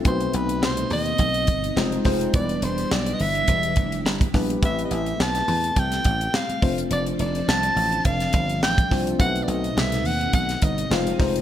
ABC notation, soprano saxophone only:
X:1
M:4/4
L:1/16
Q:"Swing 16ths" 1/4=105
K:Flyd
V:1 name="Soprano saxophone"
c2 B2 c2 ^d8 z2 | d2 c2 d3/2 ^d/2 e6 z4 | e3/2 ^d/2 e2 a4 g4 f3 z | d2 d2 a4 f4 g3 z |
^f3/2 d/2 ^d2 e2 f2 f2 d2 =f2 z2 |]